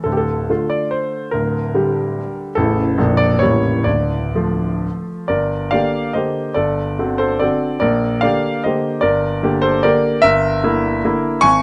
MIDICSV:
0, 0, Header, 1, 2, 480
1, 0, Start_track
1, 0, Key_signature, -1, "minor"
1, 0, Tempo, 440529
1, 60, Time_signature, 3, 2, 24, 8
1, 1023, Tempo, 411805
1, 3903, Tempo, 472069
1, 5823, Tempo, 424328
1, 5824, Key_signature, -2, "minor"
1, 8223, Tempo, 409277
1, 9663, Tempo, 396301
1, 13269, End_track
2, 0, Start_track
2, 0, Title_t, "Grand piano"
2, 0, Program_c, 0, 0
2, 40, Note_on_c, 0, 69, 58
2, 60, Note_on_c, 0, 38, 44
2, 61, Note_on_c, 0, 26, 39
2, 125, Note_off_c, 0, 69, 0
2, 132, Note_on_c, 0, 67, 46
2, 187, Note_on_c, 0, 69, 57
2, 210, Note_off_c, 0, 67, 0
2, 280, Control_c, 0, 64, 127
2, 523, Note_off_c, 0, 38, 0
2, 524, Note_off_c, 0, 26, 0
2, 542, Note_on_c, 0, 50, 39
2, 546, Note_on_c, 0, 57, 38
2, 551, Note_on_c, 0, 65, 42
2, 554, Control_c, 0, 64, 0
2, 758, Note_on_c, 0, 74, 61
2, 774, Note_off_c, 0, 69, 0
2, 989, Note_on_c, 0, 72, 56
2, 1009, Note_off_c, 0, 74, 0
2, 1447, Note_off_c, 0, 50, 0
2, 1449, Note_off_c, 0, 57, 0
2, 1452, Note_off_c, 0, 65, 0
2, 1459, Note_on_c, 0, 70, 57
2, 1473, Note_off_c, 0, 72, 0
2, 1481, Note_on_c, 0, 26, 41
2, 1483, Note_on_c, 0, 38, 44
2, 1737, Control_c, 0, 64, 127
2, 1960, Note_off_c, 0, 26, 0
2, 1961, Note_off_c, 0, 38, 0
2, 1962, Note_on_c, 0, 50, 44
2, 1968, Note_on_c, 0, 55, 46
2, 1973, Note_on_c, 0, 67, 45
2, 2485, Control_c, 0, 64, 0
2, 2687, Note_off_c, 0, 70, 0
2, 2871, Note_off_c, 0, 50, 0
2, 2874, Note_off_c, 0, 55, 0
2, 2877, Note_off_c, 0, 67, 0
2, 2904, Note_on_c, 0, 69, 72
2, 2925, Note_on_c, 0, 33, 57
2, 2925, Note_on_c, 0, 49, 40
2, 2927, Note_on_c, 0, 21, 51
2, 2929, Note_on_c, 0, 57, 41
2, 2938, Note_on_c, 0, 64, 41
2, 3140, Control_c, 0, 64, 127
2, 3352, Note_off_c, 0, 49, 0
2, 3354, Note_off_c, 0, 57, 0
2, 3358, Note_off_c, 0, 64, 0
2, 3384, Note_off_c, 0, 33, 0
2, 3385, Note_off_c, 0, 21, 0
2, 3400, Note_on_c, 0, 34, 63
2, 3401, Note_on_c, 0, 22, 55
2, 3402, Note_on_c, 0, 53, 43
2, 3409, Note_on_c, 0, 58, 45
2, 3413, Note_on_c, 0, 62, 46
2, 3416, Control_c, 0, 64, 0
2, 3605, Control_c, 0, 64, 127
2, 3626, Note_on_c, 0, 74, 80
2, 3640, Note_off_c, 0, 69, 0
2, 3858, Note_off_c, 0, 53, 0
2, 3861, Note_off_c, 0, 58, 0
2, 3863, Note_off_c, 0, 62, 0
2, 3880, Note_on_c, 0, 73, 71
2, 3888, Note_off_c, 0, 34, 0
2, 3889, Note_off_c, 0, 22, 0
2, 3890, Note_off_c, 0, 74, 0
2, 3904, Note_on_c, 0, 21, 49
2, 3906, Note_on_c, 0, 33, 52
2, 3907, Note_on_c, 0, 55, 39
2, 3912, Note_on_c, 0, 58, 36
2, 3915, Note_on_c, 0, 64, 39
2, 3916, Control_c, 0, 64, 0
2, 4092, Control_c, 0, 64, 127
2, 4325, Note_off_c, 0, 55, 0
2, 4327, Note_off_c, 0, 58, 0
2, 4329, Note_off_c, 0, 64, 0
2, 4342, Note_on_c, 0, 74, 65
2, 4350, Note_off_c, 0, 21, 0
2, 4351, Note_off_c, 0, 33, 0
2, 4354, Note_off_c, 0, 73, 0
2, 4360, Note_on_c, 0, 38, 48
2, 4365, Note_on_c, 0, 26, 43
2, 4380, Control_c, 0, 64, 0
2, 4580, Control_c, 0, 64, 127
2, 4849, Note_off_c, 0, 38, 0
2, 4852, Note_off_c, 0, 26, 0
2, 4862, Note_on_c, 0, 53, 40
2, 4867, Note_on_c, 0, 57, 40
2, 4868, Note_on_c, 0, 65, 45
2, 5353, Note_off_c, 0, 74, 0
2, 5381, Control_c, 0, 64, 0
2, 5781, Note_off_c, 0, 53, 0
2, 5783, Note_off_c, 0, 57, 0
2, 5784, Note_off_c, 0, 65, 0
2, 5804, Note_on_c, 0, 74, 62
2, 5815, Note_on_c, 0, 70, 51
2, 5823, Note_on_c, 0, 31, 50
2, 6055, Control_c, 0, 64, 127
2, 6271, Note_off_c, 0, 70, 0
2, 6279, Note_off_c, 0, 74, 0
2, 6286, Note_on_c, 0, 77, 70
2, 6296, Note_off_c, 0, 31, 0
2, 6296, Note_on_c, 0, 74, 56
2, 6307, Note_on_c, 0, 50, 39
2, 6315, Note_on_c, 0, 58, 41
2, 6315, Note_on_c, 0, 67, 43
2, 6324, Control_c, 0, 64, 0
2, 6749, Note_off_c, 0, 50, 0
2, 6752, Note_off_c, 0, 67, 0
2, 6753, Note_off_c, 0, 58, 0
2, 6754, Note_off_c, 0, 74, 0
2, 6768, Note_on_c, 0, 75, 55
2, 6781, Note_on_c, 0, 72, 41
2, 6783, Note_off_c, 0, 77, 0
2, 6794, Note_on_c, 0, 50, 35
2, 6797, Note_on_c, 0, 58, 37
2, 6803, Note_on_c, 0, 67, 39
2, 7208, Note_off_c, 0, 50, 0
2, 7209, Note_off_c, 0, 58, 0
2, 7212, Note_off_c, 0, 67, 0
2, 7214, Note_off_c, 0, 72, 0
2, 7233, Note_on_c, 0, 74, 68
2, 7240, Note_off_c, 0, 75, 0
2, 7246, Note_on_c, 0, 69, 51
2, 7256, Note_on_c, 0, 31, 51
2, 7487, Control_c, 0, 64, 127
2, 7725, Note_off_c, 0, 31, 0
2, 7739, Note_on_c, 0, 50, 41
2, 7742, Note_on_c, 0, 60, 41
2, 7746, Note_on_c, 0, 66, 46
2, 7936, Note_off_c, 0, 69, 0
2, 7954, Note_on_c, 0, 72, 69
2, 7968, Note_on_c, 0, 69, 51
2, 7975, Note_off_c, 0, 74, 0
2, 8179, Note_off_c, 0, 50, 0
2, 8181, Note_off_c, 0, 60, 0
2, 8182, Note_off_c, 0, 66, 0
2, 8192, Note_off_c, 0, 69, 0
2, 8195, Note_on_c, 0, 74, 61
2, 8208, Note_off_c, 0, 72, 0
2, 8209, Note_on_c, 0, 69, 49
2, 8220, Note_on_c, 0, 50, 37
2, 8222, Note_on_c, 0, 60, 37
2, 8229, Note_on_c, 0, 66, 43
2, 8241, Control_c, 0, 64, 0
2, 8649, Note_off_c, 0, 50, 0
2, 8650, Note_off_c, 0, 60, 0
2, 8650, Note_off_c, 0, 74, 0
2, 8654, Note_off_c, 0, 66, 0
2, 8657, Note_off_c, 0, 69, 0
2, 8667, Note_on_c, 0, 74, 70
2, 8684, Note_on_c, 0, 70, 52
2, 8689, Note_on_c, 0, 34, 57
2, 8919, Control_c, 0, 64, 127
2, 9134, Note_off_c, 0, 70, 0
2, 9147, Note_off_c, 0, 74, 0
2, 9149, Note_on_c, 0, 77, 77
2, 9156, Note_off_c, 0, 34, 0
2, 9165, Note_on_c, 0, 74, 61
2, 9174, Note_on_c, 0, 50, 42
2, 9182, Note_on_c, 0, 58, 44
2, 9186, Note_on_c, 0, 67, 47
2, 9190, Control_c, 0, 64, 0
2, 9617, Note_off_c, 0, 50, 0
2, 9620, Note_off_c, 0, 58, 0
2, 9623, Note_off_c, 0, 67, 0
2, 9624, Note_off_c, 0, 74, 0
2, 9650, Note_on_c, 0, 75, 58
2, 9651, Note_off_c, 0, 77, 0
2, 9662, Note_on_c, 0, 72, 45
2, 9676, Note_on_c, 0, 50, 39
2, 9679, Note_on_c, 0, 58, 39
2, 9684, Note_on_c, 0, 67, 44
2, 10087, Note_off_c, 0, 50, 0
2, 10089, Note_off_c, 0, 58, 0
2, 10091, Note_off_c, 0, 67, 0
2, 10093, Note_off_c, 0, 72, 0
2, 10101, Note_on_c, 0, 74, 76
2, 10120, Note_off_c, 0, 75, 0
2, 10120, Note_on_c, 0, 70, 62
2, 10127, Note_on_c, 0, 31, 58
2, 10369, Control_c, 0, 64, 127
2, 10592, Note_off_c, 0, 31, 0
2, 10613, Note_on_c, 0, 50, 48
2, 10616, Note_on_c, 0, 58, 46
2, 10623, Note_on_c, 0, 67, 53
2, 10812, Note_off_c, 0, 70, 0
2, 10836, Note_on_c, 0, 72, 78
2, 10851, Note_off_c, 0, 74, 0
2, 10852, Note_on_c, 0, 69, 59
2, 11065, Note_off_c, 0, 50, 0
2, 11066, Note_off_c, 0, 58, 0
2, 11070, Note_off_c, 0, 67, 0
2, 11087, Note_off_c, 0, 69, 0
2, 11094, Note_on_c, 0, 74, 76
2, 11096, Note_off_c, 0, 72, 0
2, 11109, Note_on_c, 0, 70, 59
2, 11118, Note_on_c, 0, 50, 48
2, 11122, Control_c, 0, 64, 0
2, 11124, Note_on_c, 0, 58, 45
2, 11128, Note_on_c, 0, 67, 46
2, 11543, Note_off_c, 0, 50, 0
2, 11547, Note_off_c, 0, 58, 0
2, 11549, Note_off_c, 0, 67, 0
2, 11553, Note_off_c, 0, 70, 0
2, 11563, Note_on_c, 0, 76, 91
2, 11575, Note_on_c, 0, 70, 69
2, 11579, Note_off_c, 0, 74, 0
2, 11590, Note_on_c, 0, 31, 68
2, 11833, Control_c, 0, 64, 127
2, 12065, Note_off_c, 0, 31, 0
2, 12072, Note_on_c, 0, 50, 49
2, 12073, Note_on_c, 0, 58, 50
2, 12081, Note_on_c, 0, 64, 58
2, 12518, Note_off_c, 0, 50, 0
2, 12518, Note_off_c, 0, 58, 0
2, 12522, Note_off_c, 0, 64, 0
2, 12571, Note_on_c, 0, 50, 51
2, 12573, Note_on_c, 0, 58, 50
2, 12578, Control_c, 0, 64, 0
2, 12579, Note_on_c, 0, 64, 53
2, 12978, Note_off_c, 0, 70, 0
2, 12987, Note_off_c, 0, 50, 0
2, 12988, Note_off_c, 0, 58, 0
2, 12992, Note_off_c, 0, 64, 0
2, 13009, Note_on_c, 0, 85, 107
2, 13020, Note_on_c, 0, 80, 87
2, 13021, Note_off_c, 0, 76, 0
2, 13034, Note_on_c, 0, 32, 67
2, 13254, Control_c, 0, 64, 127
2, 13269, Note_off_c, 0, 32, 0
2, 13269, Note_off_c, 0, 80, 0
2, 13269, Note_off_c, 0, 85, 0
2, 13269, End_track
0, 0, End_of_file